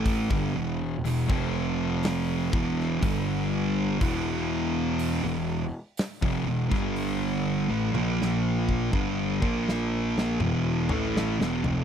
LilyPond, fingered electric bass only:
\new Staff \with { instrumentName = "Fingered electric bass" } { \clef bass \time 4/4 \key g \major \tempo 4 = 61 a,,16 g,,16 e,,8 e,,16 f,,4~ f,,16 e,,8 g,,4 | e,,4~ e,,16 e,,8 r8 f,,16 e,,16 g,,4 a,,16 | ais,,4 g,,8 ais,,4 e,,8 a,,8 e,,16 f,,16 | }